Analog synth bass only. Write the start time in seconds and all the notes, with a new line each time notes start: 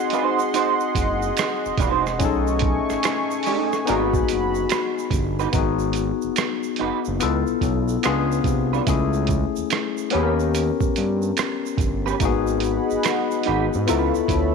0.96 F#1
1.66 E1
1.79 E1
2.21 B1
2.91 G#1
3.90 G#1
4.31 F#1
5.12 G1
5.54 G#1
6.24 F#1
6.81 F#1
7.08 F#1
7.23 C#2
7.49 B1
7.62 B1
8.06 C#2
8.45 C2
8.88 C#2
9.58 D#2
10.15 D#2
10.82 G2
10.98 G2
11.79 G1
12.21 G#1
12.91 G#1
13.48 G#1
13.75 G#2
13.90 C#2
14.16 D2
14.29 D2